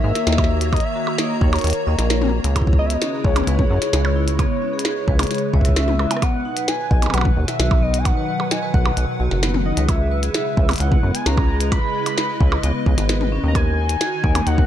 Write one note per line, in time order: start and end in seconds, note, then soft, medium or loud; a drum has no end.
0.00 0.13 G#2 medium
0.00 2.56 D#3 medium
0.00 2.56 A#3 medium
0.00 4.02 F#4 medium
0.00 0.15 A#4 medium
0.00 7.25 C#5 medium
0.00 0.74 E5 loud
0.00 3.34 A#5 medium
0.15 snare medium
0.15 closed hi-hat medium
0.27 0.80 D#2 loud
0.27 0.32 D#5 medium
0.27 snare loud
0.27 closed hi-hat soft
0.33 snare loud
0.38 0.47 A#4 medium
0.38 kick loud
0.38 snare medium
0.38 percussion blips soft
0.44 snare medium
0.50 0.61 A#4 medium
0.61 closed hi-hat medium
0.73 0.86 D#5 loud
0.73 kick loud
0.73 closed hi-hat soft
0.73 percussion blips medium
0.76 closed hi-hat soft
0.80 1.20 E5 medium
0.80 closed hi-hat soft
0.96 1.01 F#4 medium
1.07 percussion blips soft
1.18 1.27 A#3 medium
1.18 1.41 D#5 loud
1.18 snare loud
1.18 closed hi-hat medium
1.41 1.59 D#2 loud
1.41 1.52 D#4 medium
1.41 2.29 C#5 medium
1.41 kick loud
1.53 1.61 A#4 medium
1.53 closed hi-hat soft
1.53 percussion blips medium
1.56 closed hi-hat soft
1.59 closed hi-hat soft
1.61 1.73 D#2 medium
1.61 1.75 A#4 medium
1.61 closed hi-hat soft
1.64 closed hi-hat medium
1.67 closed hi-hat soft
1.70 closed hi-hat medium
1.73 closed hi-hat medium
1.87 1.96 D#2 loud
1.87 1.92 D#5 medium
1.99 2.40 A#1 medium
1.99 2.07 A#4 medium
1.99 snare medium
1.99 closed hi-hat medium
2.10 2.21 A#4 medium
2.10 snare loud
2.10 closed hi-hat medium
2.22 high tom medium
2.25 high tom medium
2.29 high tom medium
2.44 2.98 C#2 medium
2.44 closed hi-hat medium
2.56 6.22 C#3 medium
2.56 2.61 E4 medium
2.56 kick soft
2.56 closed hi-hat medium
2.56 percussion blips medium
2.61 kick medium
2.67 kick medium
2.73 6.22 G#3 medium
2.73 13.55 B4 medium
2.73 kick medium
2.79 2.87 B3 medium
2.79 6.22 E4 medium
2.79 2.87 D#5 medium
2.86 2.94 E5 medium
2.90 3.26 D#5 medium
2.90 closed hi-hat medium
3.02 3.12 C#4 medium
3.02 snare loud
3.02 closed hi-hat medium
3.13 3.21 G#4 medium
3.24 3.42 C#2 loud
3.24 3.35 G#4 medium
3.24 5.55 C#5 loud
3.24 kick loud
3.36 closed hi-hat medium
3.36 high tom medium
3.36 percussion blips medium
3.40 high tom medium
3.44 3.65 C#2 medium
3.44 3.52 B4 medium
3.44 closed hi-hat medium
3.44 high tom medium
3.47 high tom soft
3.51 high tom soft
3.55 3.67 G#4 medium
3.55 kick loud
3.55 high tom soft
3.59 high tom medium
3.70 3.79 F#2 medium
3.70 3.81 G#4 medium
3.82 snare medium
3.82 closed hi-hat medium
3.93 4.46 C#2 loud
3.93 snare loud
3.93 closed hi-hat medium
4.05 percussion blips medium
4.16 4.21 E4 medium
4.28 closed hi-hat medium
4.39 4.47 B3 medium
4.39 kick loud
4.39 closed hi-hat medium
4.39 percussion blips medium
4.62 4.73 C#4 medium
4.73 4.82 G#4 medium
4.79 closed hi-hat medium
4.85 4.96 G#4 medium
4.85 snare loud
4.85 closed hi-hat medium
5.08 5.26 C#2 loud
5.08 5.13 B4 medium
5.08 kick loud
5.19 5.27 G#4 medium
5.19 closed hi-hat medium
5.19 high tom medium
5.19 percussion blips medium
5.23 closed hi-hat medium
5.27 5.41 G#4 medium
5.27 snare medium
5.27 closed hi-hat soft
5.31 closed hi-hat medium
5.35 closed hi-hat soft
5.38 closed hi-hat soft
5.53 6.07 C#2 loud
5.53 5.62 C#5 loud
5.53 6.24 E5 loud
5.53 kick medium
5.61 kick medium
5.61 cross-stick medium
5.61 closed hi-hat medium
5.69 kick soft
5.76 5.85 C#4 medium
5.76 cross-stick medium
5.76 snare loud
5.76 closed hi-hat medium
5.88 high tom medium
5.99 6.04 E4 medium
5.99 cross-stick medium
5.99 percussion blips soft
6.11 6.19 B3 medium
6.11 closed hi-hat medium
6.11 percussion blips medium
6.17 cross-stick medium
6.22 9.89 B2 medium
6.22 6.31 B3 medium
6.22 6.69 F#5 loud
6.22 kick loud
6.22 closed hi-hat medium
6.22 percussion blips medium
6.45 6.56 D#4 medium
6.52 9.89 F#3 medium
6.57 6.65 B4 medium
6.57 closed hi-hat medium
6.68 9.89 D#3 medium
6.68 6.79 B4 medium
6.68 7.15 G#5 loud
6.68 snare loud
6.68 closed hi-hat medium
6.91 7.09 B1 loud
6.91 6.96 D#5 medium
6.91 kick loud
7.02 7.11 B4 medium
7.02 closed hi-hat medium
7.02 high tom soft
7.02 percussion blips soft
7.06 high tom medium
7.06 percussion blips soft
7.10 7.32 B1 medium
7.10 7.25 B4 medium
7.10 7.47 F#5 loud
7.10 closed hi-hat medium
7.10 percussion blips medium
7.14 high tom medium
7.14 percussion blips medium
7.18 percussion blips medium
7.21 kick loud
7.21 high tom medium
7.21 percussion blips medium
7.37 7.46 D#2 medium
7.42 11.35 F#5 medium
7.48 7.84 E5 loud
7.48 snare medium
7.48 closed hi-hat medium
7.60 8.13 B1 loud
7.60 7.65 F#4 medium
7.60 snare loud
7.60 closed hi-hat medium
7.71 kick loud
7.71 percussion blips medium
7.83 7.91 B3 medium
7.83 8.00 D#5 loud
7.94 closed hi-hat medium
7.98 8.07 G#5 medium
8.05 8.16 D#4 medium
8.05 8.53 F#5 loud
8.05 kick loud
8.05 closed hi-hat medium
8.05 percussion blips medium
8.17 8.25 B4 medium
8.28 8.39 B4 medium
8.40 percussion blips soft
8.51 8.56 D#5 medium
8.51 8.73 G#5 loud
8.51 snare loud
8.51 closed hi-hat medium
8.63 8.71 B4 medium
8.74 8.92 B1 loud
8.74 8.85 B4 medium
8.74 9.17 F#5 medium
8.74 kick loud
8.86 percussion blips medium
8.97 9.06 B1 medium
8.97 closed hi-hat medium
9.20 9.29 B1 loud
9.20 9.25 F#4 medium
9.31 9.73 F#1 medium
9.31 snare medium
9.43 9.51 B3 medium
9.43 snare loud
9.43 closed hi-hat medium
9.54 high tom medium
9.66 9.77 D#4 medium
9.66 9.90 D#5 medium
9.77 10.30 C#2 medium
9.77 9.85 B4 medium
9.77 closed hi-hat medium
9.89 13.55 C#3 medium
9.89 9.99 G#4 medium
9.89 10.82 E5 loud
9.89 kick loud
9.89 closed hi-hat medium
9.89 percussion blips soft
10.11 10.16 B4 medium
10.23 13.55 G#3 medium
10.23 10.31 G#4 medium
10.23 closed hi-hat medium
10.32 13.55 E4 medium
10.32 10.45 G#4 medium
10.32 snare loud
10.32 closed hi-hat medium
10.57 10.75 C#2 loud
10.57 kick loud
10.69 closed hi-hat soft
10.69 high tom medium
10.69 percussion blips medium
10.71 closed hi-hat soft
10.73 closed hi-hat soft
10.76 closed hi-hat medium
10.78 10.98 C#2 medium
10.78 10.85 E4 medium
10.78 11.16 F#5 loud
10.78 closed hi-hat medium
10.80 closed hi-hat medium
10.92 kick loud
10.92 high tom medium
11.03 11.12 F#2 medium
11.03 11.11 B3 medium
11.12 14.67 D#5 medium
11.12 11.28 G#5 loud
11.12 closed hi-hat medium
11.26 11.79 C#2 loud
11.26 11.37 C#4 medium
11.26 11.71 A#5 loud
11.26 snare loud
11.26 closed hi-hat medium
11.37 11.46 G#4 medium
11.37 kick loud
11.37 percussion blips medium
11.49 11.60 G#4 medium
11.61 closed hi-hat medium
11.72 11.77 B4 medium
11.72 12.59 B5 loud
11.72 kick loud
11.72 closed hi-hat medium
11.72 percussion blips soft
11.83 11.92 G#4 medium
11.95 12.06 G#4 medium
12.06 closed hi-hat medium
12.06 percussion blips soft
12.18 snare loud
12.18 closed hi-hat medium
12.40 12.58 C#2 loud
12.40 12.45 E4 medium
12.40 kick loud
12.52 percussion blips medium
12.63 12.72 C#2 medium
12.63 12.72 B3 medium
12.63 closed hi-hat medium
12.86 12.95 C#2 loud
12.86 12.95 B3 medium
12.86 kick medium
12.98 13.40 G#1 medium
12.98 13.03 B3 medium
12.98 snare medium
12.98 closed hi-hat medium
13.09 13.18 B4 loud
13.09 snare loud
13.09 closed hi-hat medium
13.21 high tom medium
13.32 13.40 C#4 loud
13.44 13.97 D#2 medium
13.44 13.49 B3 medium
13.48 13.57 A#5 medium
13.55 14.67 D#3 medium
13.55 13.66 A#4 medium
13.55 14.48 G#5 loud
13.55 kick loud
13.55 closed hi-hat medium
13.55 percussion blips soft
13.66 14.67 D#4 medium
13.89 closed hi-hat medium
14.01 14.06 F#4 medium
14.01 snare loud
14.01 closed hi-hat soft
14.24 14.42 D#2 loud
14.24 14.32 A#3 medium
14.24 kick loud
14.35 closed hi-hat medium
14.35 high tom medium
14.35 percussion blips medium
14.44 14.65 D#2 medium
14.44 14.58 D#4 medium
14.44 14.67 F#4 medium
14.44 14.67 F#5 loud
14.44 closed hi-hat medium
14.58 14.66 A#4 medium
14.58 kick loud
14.58 high tom medium